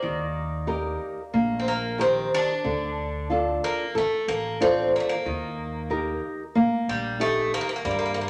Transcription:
Already playing: A#3 D5
0.03 D#2 D#3
0.67 D#4 G4 A#4
1.34 A#1 A#3
1.60 C4
1.68 A#3
1.98 D#3 C4 G4 A#4
2.34 D4
2.64 D2 D3
3.30 D4 F4 A4
3.64 A#3
3.95 A1 A3 A4
4.28 A1 A#3
4.60 C4 D4 F4 A4
4.96 A#3
5.00 A3
5.09 A#3
5.26 D#2 D#3
5.90 D#4 G4 A#4
6.55 A#1 A#3
6.88 A#1 G3
7.20 A3 D#4 G4
7.54 A#3
7.61 A#3
7.69 A#3
7.76 A#3
7.85 G2 G3 A#3
7.91 A#3
7.99 A#3
8.06 A#3
8.14 A#3
8.21 A#3

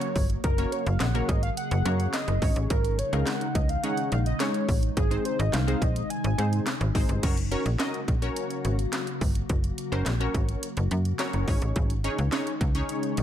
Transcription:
Already playing: C#3 F#3 A#3 C#4 F#4 A#4 C#5
0.01 closed hi-hat
0.16 G1, kick, open hi-hat
0.30 closed hi-hat
0.44 F#1 G#4 A#4, kick, closed hi-hat
0.58 A#3 C#4 F#4 A#4 C#5, closed hi-hat
0.72 C#5, closed hi-hat
0.86 F#1 F5, closed hi-hat
1.00 A#1 F#5, snare, clap, closed hi-hat
1.14 A#3 C#4 F#4 A#4 C#5, closed hi-hat
1.29 G#1 D#5, kick, closed hi-hat
1.43 F5, closed hi-hat
1.57 F#5, closed hi-hat
1.71 F#1, closed hi-hat
1.85 F#2 A#3 C#4 F#4 A#4 C#5, closed hi-hat
2.00 closed hi-hat
2.13 D#5, snare, clap, closed hi-hat
2.28 F#1, closed hi-hat
2.42 G#1 C#3 D#3 G#3 C#4 D#4 G#4 C#5, kick, open hi-hat
2.56 A1, closed hi-hat
2.70 G#1 A#4, kick, closed hi-hat
2.85 closed hi-hat
2.99 C#5, closed hi-hat
3.12 C#2 G#3 C#4 D#4 G#4 A#4 F5, closed hi-hat
3.26 F#5, snare, clap, closed hi-hat
3.41 closed hi-hat
3.55 C#2 D#5, kick, closed hi-hat
3.69 F5, closed hi-hat
3.83 G#3 C#4 D#4 G#4 C#5 F#5, closed hi-hat
3.97 closed hi-hat
4.12 A#1 F5, closed hi-hat
4.26 D#5, closed hi-hat
4.40 G#3 C#4 D#4 G#4 C#5, snare, clap, closed hi-hat
4.54 closed hi-hat
4.69 A1, kick, open hi-hat
4.83 closed hi-hat
4.97 G#1 C3 G#4, kick, closed hi-hat
5.11 G#3 C4 D#4 G#4 C5, closed hi-hat
5.25 C5, closed hi-hat
5.39 G#1 D#5, closed hi-hat
5.53 C2 F5, snare, clap, closed hi-hat
5.67 G#3 C4 D#4 G#4 C5, closed hi-hat
5.82 A#1 D#5, kick, closed hi-hat
5.96 closed hi-hat
6.10 G#5, closed hi-hat
6.24 G#1, closed hi-hat
6.38 G#2 G#3 C4 D#4 G#4 C5, closed hi-hat
6.53 closed hi-hat
6.67 snare, clap, closed hi-hat
6.81 G#1, closed hi-hat
6.95 G#1 G#3 C4 D#4 G#4 C5, kick, open hi-hat
7.09 G1, closed hi-hat
7.23 F#1 C#3 F#3 A#3 C#4 F#4 A#4 C#5, kick, closed hi-hat, crash
7.37 closed hi-hat
7.51 C#4 F#4 A#4 C#5, closed hi-hat
7.66 A#1, closed hi-hat
7.79 C#4 F#4 A#4 D#5, snare, clap, closed hi-hat
7.94 closed hi-hat
8.08 A#1, kick, closed hi-hat
8.22 C#4 F#4 A#4 C#5, closed hi-hat
8.36 closed hi-hat
8.50 closed hi-hat
8.65 G#1, closed hi-hat
8.79 closed hi-hat
8.93 snare, clap, closed hi-hat
9.07 closed hi-hat
9.21 G1, kick, open hi-hat
9.35 closed hi-hat
9.49 F#1, kick, closed hi-hat
9.64 closed hi-hat
9.78 closed hi-hat
9.92 F#1 C#4 F#4 A#4 C5, closed hi-hat
10.06 A#1, snare, clap, closed hi-hat
10.20 C#4 F#4 A#4 C#5, closed hi-hat
10.34 G#1, kick, closed hi-hat
10.49 closed hi-hat
10.63 closed hi-hat
10.77 F#1, closed hi-hat
10.91 F#2, closed hi-hat
11.05 closed hi-hat
11.19 C#4 F#4 A#4 C#5, snare, clap, closed hi-hat
11.33 F#1, closed hi-hat
11.48 G#1 C#3 D#3 G#3 C#4 D#4 G#4 C#5, kick, open hi-hat
11.62 A1, closed hi-hat
11.76 G#1, kick, closed hi-hat
11.90 closed hi-hat
12.04 C#4 D#4 G#4 C#5, closed hi-hat
12.18 C#2, closed hi-hat
12.32 C#4 D#4 G#4 C#5, snare, clap, closed hi-hat
12.47 closed hi-hat
12.61 C#2, kick, closed hi-hat
12.75 C#4 D#4 G#4 C#5, closed hi-hat
12.89 closed hi-hat
13.03 closed hi-hat
13.17 A#1, closed hi-hat

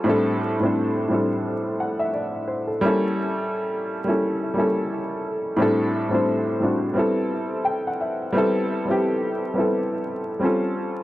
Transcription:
0.04 A2 G3 C4 D4
0.08 E4 A4
0.60 A2 G3 C4 D4
0.64 E4 C5
1.08 A2 G3 C4 D4
1.13 E4 A4
1.80 F#5
1.99 E5
2.13 D5
2.48 C5
2.67 A4
2.81 G3 A#3 C#4
2.85 E4 A4
4.04 G3 A#3 C#4
4.08 E4 A4
4.54 G3 A#3 C#4
4.58 E4 A4
5.56 A2 G3 C4 D4
5.61 E4 A4
6.09 A2 G3 C4 D4
6.13 E4 C5
6.60 A2 G3 C4 D4 E4
6.65 F#4
6.94 G3 B3 C4
6.98 E4 A4
7.65 G5
7.87 F#5
8.01 E5
8.33 G3 B3 C4
8.37 E4 A4
8.85 G3 B3 C4
8.89 E4 G4
9.54 G3 B3 C4
9.58 E4 A4
10.40 G3 C4 C#4
10.44 F4 A4

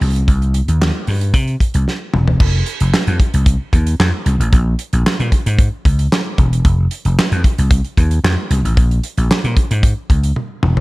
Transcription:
0.01 C2, open hi-hat
0.16 closed hi-hat
0.28 C2, kick, closed hi-hat
0.42 closed hi-hat
0.54 closed hi-hat
0.68 D#2, closed hi-hat
0.82 snare, clap
1.07 G2, open hi-hat
1.21 closed hi-hat
1.34 C3, kick, closed hi-hat
1.47 closed hi-hat
1.60 kick, closed hi-hat
1.74 C2, closed hi-hat
1.88 snare
2.13 E1, mid tom
2.28 floor tom
2.40 F1, kick, crash
2.66 closed hi-hat
2.80 F1, closed hi-hat
2.93 muted slap bass stroke, snare, clap
3.07 F2, closed hi-hat
3.20 kick, closed hi-hat
3.34 C2, closed hi-hat
3.46 kick, closed hi-hat
3.73 D#2, kick, closed hi-hat
3.87 closed hi-hat
4.00 F2, snare, clap
4.26 C2, closed hi-hat
4.40 A1, closed hi-hat
4.52 A#1, kick, closed hi-hat
4.79 closed hi-hat
4.93 A#1, closed hi-hat
5.06 snare, clap
5.20 A#2, closed hi-hat
5.32 kick, closed hi-hat
5.46 G#2, closed hi-hat
5.59 kick, closed hi-hat
5.85 C#2, kick, closed hi-hat
5.99 closed hi-hat
6.12 snare, clap
6.38 E1, kick, closed hi-hat
6.53 closed hi-hat
6.65 F1, kick, closed hi-hat
6.91 closed hi-hat
7.05 F1, closed hi-hat
7.19 snare, clap
7.32 F2, closed hi-hat
7.44 kick, closed hi-hat
7.58 C2, closed hi-hat
7.71 kick, closed hi-hat
7.84 closed hi-hat
7.97 D#2, kick, closed hi-hat
8.11 closed hi-hat
8.24 F2, snare, clap
8.50 C2, closed hi-hat
8.65 A1, closed hi-hat
8.77 A#1, kick, closed hi-hat
8.91 closed hi-hat
9.04 closed hi-hat
9.17 A#1, closed hi-hat
9.30 muted slap bass stroke, snare, clap
9.44 A#2, closed hi-hat
9.57 kick, closed hi-hat
9.71 G#2, closed hi-hat
9.83 kick, closed hi-hat
10.10 C#2, kick, closed hi-hat
10.23 closed hi-hat
10.36 high tom
10.63 E1, mid tom
10.77 floor tom

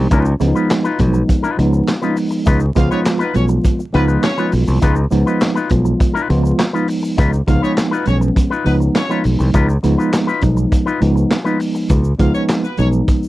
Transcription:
Already playing: F3 G#3 B3 D#4
0.11 C#2 D#4 F4 B4, kick, closed hi-hat, shaker
0.25 muted clean electric guitar stroke, shaker
0.40 C#2 F3 G#3 B3 C#4, muted clean electric guitar stroke, closed hi-hat, shaker
0.48 D#4
0.55 D#4 F4 B4, shaker
0.70 muted clean electric guitar stroke, snare, clap, closed hi-hat, shaker
0.84 D#4 F4 B4, shaker
0.99 B1 F3 G#3 B3 D#4, muted clean electric guitar stroke, kick, closed hi-hat, shaker
1.14 muted clean electric guitar stroke, shaker
1.28 muted clean electric guitar stroke, kick, closed hi-hat, shaker
1.43 D#4 F4 B4, shaker
1.58 C#2 F3 G#3 B3 D#4, muted clean electric guitar stroke, closed hi-hat
1.73 muted clean electric guitar stroke, shaker
1.88 muted clean electric guitar stroke, snare, clap, closed hi-hat, shaker
2.02 F3 G#3 B3 C#4 D#4 F4 B4, shaker
2.10 D#4
2.17 muted clean electric guitar stroke, open hi-hat, shaker
2.31 muted clean electric guitar stroke, shaker
2.46 C#2 D#4 F4 B4, kick, closed hi-hat, shaker
2.60 muted clean electric guitar stroke, shaker
2.75 C#2 F3 G#3 B3 F4 F5, muted clean electric guitar stroke, kick, closed hi-hat, shaker
2.90 C#4 D#4 F4 B4 C#5, shaker
3.05 snare, clap, closed hi-hat, shaker
3.19 B3 D#4 F4 B4, shaker
3.34 B1 F3 G#3 B3 C#4 F4 C#5, muted clean electric guitar stroke, closed hi-hat, shaker
3.48 muted clean electric guitar stroke, shaker
3.64 muted clean electric guitar stroke, kick, closed hi-hat, shaker
3.79 muted clean electric guitar stroke, shaker
3.93 C#2 F3 G#3 B3 D#4 F4 B4, closed hi-hat
4.08 D#4 F4 B4, shaker
4.23 C#4 C#5, snare, clap, closed hi-hat, shaker
4.37 F3 G#3 B3 D#4 F4 B4, shaker
4.52 B1, muted clean electric guitar stroke, open hi-hat, shaker
4.67 C2, muted clean electric guitar stroke, shaker
4.82 C#2 D#4 F4 B4, kick, closed hi-hat, shaker
4.96 muted clean electric guitar stroke, shaker
5.11 C#2 F3 G#3 B3 D#4, muted clean electric guitar stroke, closed hi-hat, shaker
5.26 D#4 F4 B4, shaker
5.41 snare, clap, closed hi-hat, shaker
5.55 D#4 F4 B4, shaker
5.69 B1 F3 G#3 B3 F4, muted clean electric guitar stroke, kick, closed hi-hat, shaker
5.85 muted clean electric guitar stroke, shaker
5.99 muted clean electric guitar stroke, kick, closed hi-hat, shaker
6.14 D#4 F4 B4, shaker
6.29 C#2 F3 G#3 B3 F4, muted clean electric guitar stroke, closed hi-hat
6.43 muted clean electric guitar stroke, shaker
6.58 muted clean electric guitar stroke, snare, clap, closed hi-hat, shaker
6.73 F3 G#3 B3 D#4 F4 B4, shaker
6.88 open hi-hat, shaker
7.03 muted clean electric guitar stroke, shaker
7.17 C#2 D#4 F4 B4, kick, closed hi-hat, shaker
7.32 muted clean electric guitar stroke, shaker
7.47 C#2 F3 G#3 B3 D#4 F4 F5, muted clean electric guitar stroke, kick, closed hi-hat, shaker
7.62 C#4 D#4 F4 B4 C#5, shaker
7.76 muted clean electric guitar stroke, snare, clap, closed hi-hat, shaker
7.91 B3 D#4 F4 B4, shaker
8.06 B1 F3 G#3 B3 C#4 C#5, closed hi-hat, shaker
8.21 muted clean electric guitar stroke, shaker
8.36 muted clean electric guitar stroke, kick, closed hi-hat, shaker
8.50 D#4 F4 B4, shaker
8.65 C#2 F3 G#3 B3 D#4 B4, muted clean electric guitar stroke, closed hi-hat
8.80 muted clean electric guitar stroke, shaker
8.95 C#4 C#5, muted clean electric guitar stroke, snare, clap, closed hi-hat, shaker
9.09 F3 G#3 B3 D#4 F4 B4, shaker
9.24 B1, muted clean electric guitar stroke, open hi-hat, shaker
9.39 C2, muted clean electric guitar stroke, shaker
9.54 C#2 D#4 F4 B4, kick, closed hi-hat, shaker
9.68 muted clean electric guitar stroke, shaker
9.83 C#2 F3 G#3 B3 D#4, muted clean electric guitar stroke, closed hi-hat, shaker
9.97 D#4 F4 B4, shaker
10.12 muted clean electric guitar stroke, snare, clap, closed hi-hat, shaker
10.27 D#4 F4 B4, shaker
10.41 B1 F3 G#3 B3 D#4, muted clean electric guitar stroke, kick, closed hi-hat, shaker
10.57 muted clean electric guitar stroke, shaker
10.72 muted clean electric guitar stroke, kick, closed hi-hat, shaker
10.86 D#4 F4 B4, shaker
11.00 C#2 F3 G#3 B3 D#4, muted clean electric guitar stroke, closed hi-hat
11.16 muted clean electric guitar stroke, shaker
11.30 muted clean electric guitar stroke, snare, clap, closed hi-hat, shaker
11.44 F3 G#3 B3 D#4 F4 B4, shaker
11.59 muted clean electric guitar stroke, open hi-hat, shaker
11.75 muted clean electric guitar stroke, shaker
11.89 C#2, kick, closed hi-hat, shaker
12.04 shaker
12.18 C#2 F3 G#3 B3 D#4 F4 F5, kick, closed hi-hat, shaker
12.34 C#4 C#5, shaker
12.48 snare, clap, closed hi-hat, shaker
12.64 B3 B4, shaker
12.77 B1 F3 G#3 B3 C#4 D#4 C#5, closed hi-hat, shaker
12.93 shaker
13.08 kick, closed hi-hat, shaker
13.23 shaker

